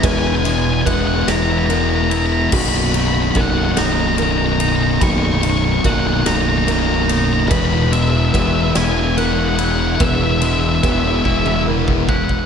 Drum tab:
CC |------------|x-----------|------------|------------|
RD |x-x-x-x-x-x-|--x-x-x-x-x-|x-x-x-x-x-x-|x-x-x-x-x-x-|
SD |------o-----|------o-----|------o-----|------o-----|
T1 |------------|------------|------------|------------|
BD |o---o-------|o---o-------|o---o-------|o---o-------|

CC |------------|
RD |x-x-x-------|
SD |------------|
T1 |-------o----|
BD |o---o-o--ooo|